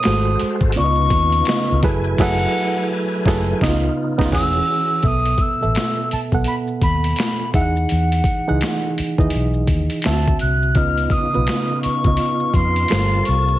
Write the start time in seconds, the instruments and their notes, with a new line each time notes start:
Already playing: flute D#6
0.03 fingered electric bass G#1, tonewheel organ G#3 F#4 A4 C5, reed electric piano G#3 F#4 A4, finger snap, snare, closed hi-hat, maracas
0.07 reed electric piano C5
0.24 maracas
0.39 muted fingered electric bass stroke, closed hi-hat, maracas
0.61 fingered electric bass G#1, kick, maracas
0.72 reed electric piano C#3 B3, tonewheel organ F4, closed hi-hat, maracas
0.76 fingered electric bass C#2, tonewheel organ C#3 B3 D#4, reed electric piano F4 D5, flute C#6
0.84 reed electric piano D#5
0.95 maracas
1.10 fingered electric bass D#2, kick, closed hi-hat, maracas
1.32 closed hi-hat, maracas
1.45 reed electric piano C#3 B3 F4 D#5, finger snap, snare, closed hi-hat, maracas
1.71 fingered electric bass C#2, maracas
1.83 fingered electric bass F#1, tonewheel organ F#3 A3 E4 B4 G#5, reed electric piano F#3 E4 G#4 A4 B4, kick, closed hi-hat
2.04 maracas
2.18 fingered electric bass F#1, reed electric piano F#3 E4 G#4 A4 B4, flute F#5, kick, snare, crash
3.26 fingered electric bass F#1, reed electric piano F#3 E4 G#4 A4 B4, kick, snare
3.61 fingered electric bass C#2, reed electric piano C#3 B3 D#4 D#5, tonewheel organ C#3 B3 D#4 F4, kick, snare
3.69 reed electric piano F4
4.18 fingered electric bass C#2, reed electric piano C#3 B3 D#4 D#5, kick, snare
4.25 reed electric piano F4
4.31 fingered electric bass E1, tonewheel organ E3 C#4 F#4 G#4, reed electric piano E3 C#4 G#4 F#5, flute E6, kick, snare, crash
5.03 fingered electric bass B1, reed electric piano B2 B3 A4 E5, flute D#6, kick, closed hi-hat, maracas
5.25 closed hi-hat, maracas
5.38 flute E6, kick, closed hi-hat, maracas
5.61 fingered electric bass A1, reed electric piano B2 B3 A4 E5, maracas
5.75 finger snap, snare, closed hi-hat, maracas
5.97 maracas
6.11 flute A5, muted fingered electric bass stroke, closed hi-hat
6.32 fingered electric bass B1, reed electric piano B2 B3 A4 F#5, kick, maracas
6.44 flute B5, closed hi-hat, maracas
6.67 maracas
6.82 fingered electric bass D#2, flute B5, kick, closed hi-hat
7.04 closed hi-hat, maracas
7.16 finger snap, snare, closed hi-hat, maracas
7.42 maracas
7.53 fingered electric bass E2, reed electric piano E3 D#4 G#4 E5, flute F#5, kick, closed hi-hat, maracas
7.62 reed electric piano F#5
7.76 maracas
7.89 fingered electric bass E2, closed hi-hat, maracas
8.12 closed hi-hat, maracas
8.24 kick, closed hi-hat, maracas
8.47 fingered electric bass C#2, reed electric piano E3 D#4 G#4 F#5, maracas
8.61 finger snap, snare, closed hi-hat, maracas
8.83 maracas
8.98 muted fingered electric bass stroke, closed hi-hat
9.18 fingered electric bass D#2, reed electric piano E3 D#4 G#4 D#5, kick, maracas
9.30 closed hi-hat, maracas
9.35 fingered electric bass B1
9.54 maracas
9.67 fingered electric bass D#2, kick, closed hi-hat
9.90 closed hi-hat, maracas
10.02 reed electric piano D3 C4 E4, flute A5, finger snap, snare, closed hi-hat, maracas
10.06 fingered electric bass D2, reed electric piano E5
10.12 reed electric piano F#4
10.28 kick, maracas
10.39 fingered electric bass C2, flute F#6, closed hi-hat, maracas
10.62 maracas
10.75 fingered electric bass C#2, reed electric piano C#3 B3 F4 D#5, tonewheel organ C#3 B3 D#4 F4, flute F6, kick, closed hi-hat, maracas
10.98 closed hi-hat, maracas
11.10 flute D#6, kick, closed hi-hat, maracas
11.34 fingered electric bass B1, reed electric piano C#3 B3 F4 B4, maracas
11.47 finger snap, snare, closed hi-hat, maracas
11.69 maracas
11.83 flute C#6, muted fingered electric bass stroke, closed hi-hat
12.04 fingered electric bass C#2, reed electric piano C#3 B3 F4 D#5, kick, maracas
12.17 closed hi-hat, maracas
12.40 maracas
12.54 fingered electric bass F2, flute C6, kick, closed hi-hat
12.76 closed hi-hat, maracas
12.88 fingered electric bass G1, tonewheel organ G3 A#3 C4 A5, reed electric piano G3 F4 A4 A#4 C5, finger snap, snare, closed hi-hat, maracas
13.14 maracas
13.25 fingered electric bass C2, flute C#6, closed hi-hat, maracas
13.48 maracas